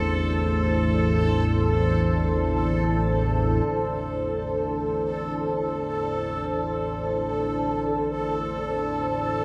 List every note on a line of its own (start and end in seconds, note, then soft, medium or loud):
0.00 3.64 A1 medium
0.00 3.65 E2 medium
0.00 3.68 A3 medium
0.00 9.45 D4 medium
0.00 9.45 E4 medium
0.00 3.65 A4 medium
0.00 9.45 A4 medium
0.00 9.45 C5 medium
3.66 9.45 A1 medium
3.66 9.45 E2 medium
3.66 9.45 A4 medium